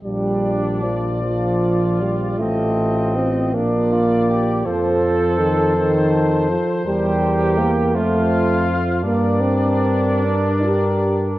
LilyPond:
<<
  \new Staff \with { instrumentName = "Trumpet section" } { \time 6/8 \key bes \major \tempo 4. = 53 d''2. | ees''4. d''4. | c''2.~ | c''4. f''4. |
d''2. | }
  \new Staff \with { instrumentName = "Trombone section" } { \time 6/8 \key bes \major f'2.~ | f'2. | a'2. | bes'4. c''4. |
bes'2. | }
  \new Staff \with { instrumentName = "Flugelhorn" } { \time 6/8 \key bes \major d'4. f'4. | c'4. d'8 f'8 g'8 | a'2~ a'8 r8 | g'4. f'4. |
d'2. | }
  \new Staff \with { instrumentName = "Euphonium" } { \clef bass \time 6/8 \key bes \major g4 f8 f4 g8 | a4 c'8 bes4. | f4 ees8 ees4 f8 | g4 bes8 a4 r8 |
bes8 c'4 d'8 g'4 | }
  \new Staff \with { instrumentName = "Tuba" } { \clef bass \time 6/8 \key bes \major bes,,2. | a,,4. bes,,4. | f,2~ f,8 r8 | e,4. f,4. |
g,2. | }
>>